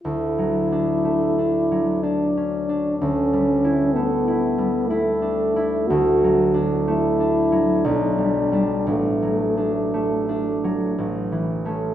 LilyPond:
<<
  \new Staff \with { instrumentName = "French horn" } { \time 3/4 \key d \major \tempo 4 = 60 e'2 d'4 | cis'4 b4 a4 | fis'8 r8 e'4 d'4 | a2 r4 | }
  \new Staff \with { instrumentName = "Harp" } { \time 3/4 \key d \major \tuplet 3/2 { d,8 fis8 d'8 a8 d'8 fis8 d'8 cis'8 d'8 } | \tuplet 3/2 { d,8 g8 e'8 a8 e'8 g8 e'8 d'8 e'8 } | \tuplet 3/2 { d,8 fis8 d'8 a8 d'8 fis8 b,,8 g8 <g d'>8 } | \tuplet 3/2 { a,,8 fis8 d'8 a8 d'8 fis8 a,,8 e8 <a cis'>8 } | }
>>